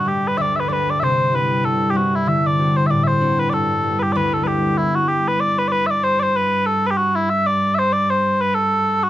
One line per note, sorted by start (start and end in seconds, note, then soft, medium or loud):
0.00 0.43 G2 soft
0.00 4.78 G2 medium
0.00 1.17 C4 soft
0.00 0.79 E4 soft
0.05 0.68 G3 soft
0.05 0.69 A3 soft
0.05 0.69 D4 soft
0.05 0.28 G4 medium
0.28 0.38 B4 medium
0.38 1.06 D2 medium
0.38 0.42 E5 loud
0.42 0.56 D5 loud
0.56 0.60 E5 medium
0.60 0.68 B4 medium
0.68 1.06 G3 soft
0.68 4.02 A3 soft
0.68 2.58 D4 medium
0.68 0.73 D5 medium
0.73 0.90 B4 medium
0.90 1.00 D5 medium
1.00 1.69 C3 medium
1.00 1.35 C5 medium
1.00 1.03 E5 medium
1.32 1.93 G3 soft
1.32 1.94 C4 soft
1.32 1.94 E4 soft
1.32 1.65 B4 medium
1.64 2.32 G2 medium
1.64 1.90 A4 medium
1.90 2.32 G3 soft
1.90 1.97 G4 medium
1.94 2.58 C4 soft
1.94 3.84 E4 soft
1.94 2.15 F#4 medium
2.15 2.28 E4 medium
2.26 2.95 D3 soft
2.26 2.47 E5 medium
2.47 2.76 D5 medium
2.58 3.20 C4 soft
2.58 3.20 D4 soft
2.58 3.21 F#4 soft
2.76 2.87 C5 medium
2.87 3.57 A2 medium
2.87 3.04 D5 medium
2.87 2.90 E5 medium
3.04 3.39 C5 medium
3.04 3.07 E5 medium
3.21 3.90 C4 soft
3.21 6.01 D4 soft
3.21 3.59 F#4 soft
3.39 3.50 B4 medium
3.50 4.20 G2 medium
3.50 3.99 A4 medium
3.50 3.54 D5 medium
3.83 4.44 G3 soft
3.83 4.46 B3 soft
3.83 4.47 E4 soft
3.99 4.13 G4 medium
3.99 4.03 B4 medium
4.13 4.83 D2 medium
4.13 4.17 D5 medium
4.17 4.34 B4 medium
4.34 4.44 A4 medium
4.44 4.83 G3 soft
4.44 7.57 B3 soft
4.44 7.08 E4 soft
4.44 4.78 G4 medium
4.44 4.47 B4 medium
4.78 9.10 G2 medium
4.78 4.95 E4 medium
4.95 5.08 F#4 medium
5.08 5.28 G4 medium
5.28 5.40 B4 medium
5.40 5.59 D5 loud
5.59 5.68 B4 medium
5.68 5.87 B4 medium
5.68 5.72 D5 medium
5.87 5.91 E5 medium
5.91 6.04 D5 medium
6.04 6.20 C5 loud
6.20 6.36 C5 medium
6.20 6.23 D5 medium
6.36 6.66 B4 medium
6.66 6.87 A4 medium
6.87 6.91 B4 medium
6.91 6.97 G4 medium
6.97 7.15 F#4 medium
7.15 7.30 E4 medium
7.30 7.46 E5 loud
7.46 7.75 D5 medium
7.75 7.79 E5 medium
7.79 7.93 C5 medium
7.93 8.10 D5 loud
8.10 8.41 C5 medium
8.41 8.55 B4 medium
8.55 9.03 A4 medium
9.03 9.10 F#4 medium